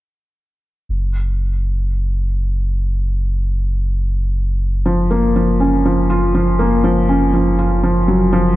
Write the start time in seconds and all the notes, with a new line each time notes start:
0.89 F#1
4.86 F3
5.11 A#3
5.36 F3
5.60 C#4
5.85 F3
6.10 F4
6.34 F3
6.59 A#3
6.84 F3
7.09 C#4
7.33 F3
7.59 F4
7.83 F3
8.08 F#3
8.33 F3